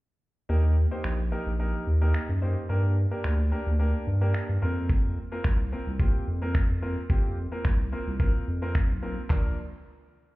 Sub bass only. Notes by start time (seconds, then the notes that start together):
0.49 D#2
1.04 A#1
1.46 A#1
1.87 D#2
2.29 F#2
2.69 G2
3.24 D2
3.67 D2
4.07 G2
4.49 G2
4.62 F2
5.45 C2
5.87 C2
6.27 F2
6.69 F2
7.10 F2
7.65 C2
8.07 C2
8.47 F2
8.89 B1
9.30 A#1